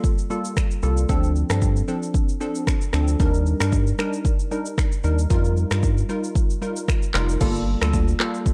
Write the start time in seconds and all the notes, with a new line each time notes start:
0.04 kick, shaker
0.18 shaker
0.30 G3 A#3 F4 A4, shaker
0.45 shaker
0.57 finger snap, kick, cross-stick, shaker
0.71 shaker
0.83 C2 G3 A#3 F4 A4, shaker
0.97 shaker
1.09 D2 F3 C4 D4 A4, kick, shaker
1.23 shaker
1.36 shaker
1.50 G2 F3 C4 D4 A4, finger snap, cross-stick, shaker
1.62 kick, shaker
1.76 shaker
1.88 F3 C4 D4 A4, shaker
2.03 shaker
2.14 kick, shaker
2.29 shaker
2.40 F3 C4 D4 A4, shaker
2.55 shaker
2.67 finger snap, kick, cross-stick, shaker
2.81 shaker
2.93 D2 F3 C4 D4 A4, finger snap, cross-stick, shaker
3.08 shaker
3.20 D#2 G3 D4 D#4 A#4, kick, shaker
3.34 shaker
3.46 shaker
3.60 G2 G3 D4 D#4 A#4, finger snap, cross-stick, shaker
3.72 kick, shaker
3.87 shaker
3.98 G3 D4 D#4 A#4, finger snap, cross-stick, shaker
4.13 shaker
4.25 kick, shaker
4.39 shaker
4.51 G3 D4 D#4 A#4, shaker
4.66 shaker
4.78 finger snap, kick, cross-stick, shaker
4.92 shaker
5.04 D#2 G3 D4 D#4 A#4, shaker
5.19 shaker
5.30 F2 G3 D#4 F4 A#4, kick, shaker
5.45 shaker
5.57 shaker
5.71 G2 G3 D#4 F4 A#4, finger snap, cross-stick, shaker
5.83 kick, shaker
5.98 shaker
6.09 G3 D#4 F4 A#4, shaker
6.24 shaker
6.35 kick, shaker
6.50 shaker
6.62 G3 D#4 F4 A#4, shaker
6.76 shaker
6.88 finger snap, kick, cross-stick, shaker
7.02 shaker
7.14 F1 G3 D#4 F4 A#4, finger snap, cross-stick, clap, shaker
7.29 shaker
7.41 G1 G3 A#3 F4 A4, kick, crash, shaker
7.55 shaker
7.81 D2 G3 A#3 F4 A4, finger snap, cross-stick, shaker
7.93 kick, shaker
8.08 shaker
8.20 G3 A#3 F4 A4, finger snap, cross-stick, clap
8.34 shaker
8.46 kick, shaker